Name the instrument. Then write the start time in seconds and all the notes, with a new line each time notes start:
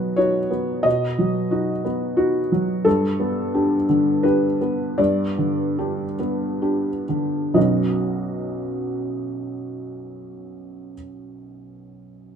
felt piano
Already playing: B2 F#3 B3 D#4 F#4 B4
0.16 D#4 F#4 C#5
0.50 B3
0.83 B2 D#5
1.18 F#3
1.51 D#4 F#4
1.85 B3
2.17 D#4 F#4
2.52 F#3
2.85 G2 A4
3.20 B3
3.54 D4 G4
3.89 D3
4.23 D4 G4 B4
4.61 B3
4.98 G2 D5
5.38 D3
5.79 D4 G4
6.19 B3
6.62 D4 G4
7.09 D3
7.54 B1 F#2 F#3 B3 D#4 F#4 D#5